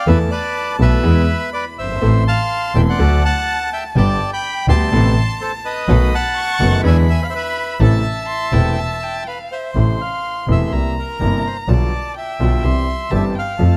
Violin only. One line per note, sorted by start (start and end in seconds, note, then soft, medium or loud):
0.08 1.06 A5 medium
1.05 1.78 B5 medium
2.02 3.01 C6 medium
2.99 3.98 A5 medium
3.97 4.92 G5 medium
4.93 5.85 A5 medium
5.87 6.32 B5 medium
6.37 6.81 C#6 medium
6.84 7.82 B5 medium
7.80 8.28 A5 medium
8.28 8.55 C6 medium
8.53 8.80 G5 medium
8.79 9.05 A5 medium
9.03 9.29 G5 medium
9.28 9.55 F5 medium
9.53 9.75 E5 medium
9.76 10.62 C6 medium
10.66 10.74 C6 soft
10.73 11.70 A#5 medium
11.68 12.16 A5 medium
12.17 12.65 G5 medium
12.64 13.12 C6 medium
13.10 13.36 A5 medium
13.35 13.59 G5 medium
13.60 13.77 A5 medium